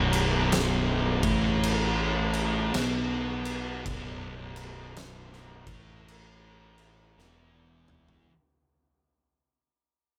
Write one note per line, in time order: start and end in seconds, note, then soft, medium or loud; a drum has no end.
0.00 1.19 B0 loud
0.00 1.22 B1 loud
0.00 1.22 B2 loud
0.13 crash medium
0.52 snare loud
0.52 crash medium
1.23 2.71 A1 loud
1.23 2.74 A2 medium
1.23 2.74 A3 loud
1.23 kick loud
1.23 crash medium
1.63 crash medium
2.33 crash medium
2.74 3.82 B1 medium
2.74 3.84 B2 loud
2.74 3.84 B3 loud
2.74 snare loud
2.74 crash medium
3.45 crash medium
3.85 5.63 B0 loud
3.85 5.64 B1 loud
3.85 5.65 B2 loud
3.85 kick loud
3.85 crash medium
4.56 crash medium
4.96 snare loud
4.96 crash medium
5.33 snare soft
5.66 7.14 A1 medium
5.66 7.17 A2 medium
5.66 7.17 A3 loud
5.66 kick loud
5.66 crash medium
6.08 crash medium
6.78 crash medium
7.18 8.25 E1 loud
7.18 8.28 E2 medium
7.18 8.28 E3 loud
7.18 snare medium
7.88 mid tom loud
8.09 floor tom loud